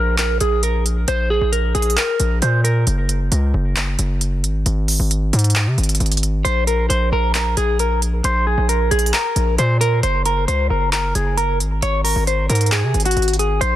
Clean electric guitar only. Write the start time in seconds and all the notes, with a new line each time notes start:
Already playing: A#4
0.19 A#4
0.41 G#4
0.63 A#4
1.08 C5
1.30 G#4
1.52 A#4
1.75 G#4
1.97 A#4
2.42 C5
2.64 A#4
6.45 C5
6.67 A#4
6.90 C5
7.13 A#4
7.35 A#4
7.57 G#4
7.80 A#4
8.25 C5
8.47 G#4
8.69 A#4
8.91 G#4
9.14 A#4
9.59 C5
9.81 A#4
10.03 C5
10.26 A#4
10.48 C5
10.70 A#4
10.93 A#4
11.15 G#4
11.37 A#4
11.83 C#5
12.04 A#4
12.27 C5
12.49 A#4
12.72 G#4
13.06 F#4
13.39 G#4
13.61 C5